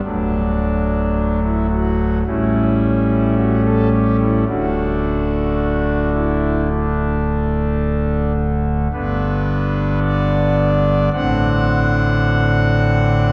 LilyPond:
<<
  \new Staff \with { instrumentName = "Pipe organ" } { \time 4/4 \key d \mixolydian \tempo 4 = 54 d'4~ d'16 e'16 fis'8 e'4 fis'16 a'16 g'16 e'16 | fis'4. e'8 d'4. r8 | b'4 d''4 fis''2 | }
  \new Staff \with { instrumentName = "Pipe organ" } { \clef bass \time 4/4 \key d \mixolydian <d,, d, fis a>2 <a,, a, g a cis'>2 | <d,, d, d a d'>1 | <g,, g, d b d'>2 <a,, a, d c' d'>2 | }
>>